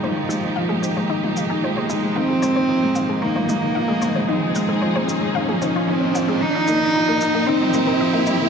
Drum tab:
SH |--x---x---x---x-|--x---x---x---x-|--x---x---x---x-|--x---x---x---x-|
T2 |o--------o------|---------oo---o-|o--------o------|---------oo---o-|